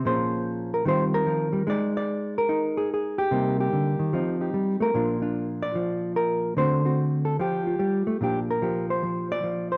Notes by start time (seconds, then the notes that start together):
0.05 A#2 F3 C#4 G#4 C5
0.74 A#4
0.85 D#3 G3 C4 F4 C5
1.14 A#4
1.26 F3
1.53 G3
1.67 G#3 D#4 D5
1.97 D5
2.38 A#4
2.49 D#4
2.77 G#4
2.94 G#4
3.18 G4
3.31 C3 G3 A#3 D#4
3.60 G4
3.73 D3
3.99 D#3
4.13 F3 C4 D#4
4.41 D#4 G4
4.54 G3
4.80 A3 A#4
4.94 A#2 F3 D4 F4
5.22 D4 F4
5.62 D5
5.75 F3
6.16 A#4
6.57 D3 A3 C4 F#4 C5
6.85 C4 F#4
7.25 A4
7.39 F3 F4 G4
7.67 F4
7.79 G3
8.07 A3
8.21 A#2 F3 D4 G4
8.51 A#4
8.62 F3 G4
8.90 C5
9.03 F3
9.32 D5
9.44 F3
9.72 C5